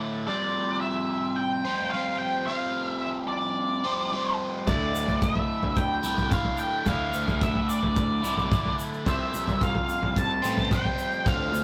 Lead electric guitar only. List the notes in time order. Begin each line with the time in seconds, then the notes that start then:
0.28 D5
0.81 E5
1.36 G5
1.91 F5
2.18 G5
2.46 F5
2.87 E5
3.02 E5
3.28 D5
4.67 D5
5.23 E5
5.77 G5
6.31 F5
6.59 G5
6.88 F5
7.42 E5
7.69 D5
9.08 E5
9.63 F5
10.18 A5
10.73 G5
11.27 F5